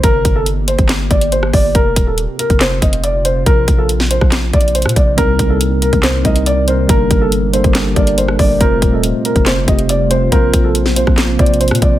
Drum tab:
HH |x-----x-----x-----x--x--x-----x--x--x-----o-----|x-----x-----x-----x--x--x-----x--x--x-----x-----|x-----x-----x-----x-----x-----x-x-x-x-x-x-x-----|x-----x-----x-----x--x--x-----x--x--x-----x-----|
CP |------------------------x-----------------------|------------------------x-----------------------|------------------------x-----------------------|------------------------x-----------------------|
SD |------------------------o--------------r--------|------------------------o-----------------------|---------------o-----r--o--------------r--------|------------------------o-----------------------|
BD |o-----o--------------o--------o-----------o-----|o-----o--------------o--------o-----------------|o-----o--------------o--------o-----------o-----|o-----o--------------o--------o-----------------|

HH |x-----x-----x-----x--x--x-----x--x--x-----o-----|x-----x-----x-----x--x--x-----x--x--x-----x-----|x-----x-----x-----x-----x-----x-x-x-x-x-x-x-----|
CP |------------------------x-----------------------|------------------------x-----------------------|------------------------x-----------------------|
SD |------------------------o--------------r--------|------------------------o-----------------------|---------------o-----r--o--------------r--------|
BD |o-----o--------------o--------o-----------o-----|o-----o--------------o--------o-----------------|o-----o--------------o--------o-----------o-----|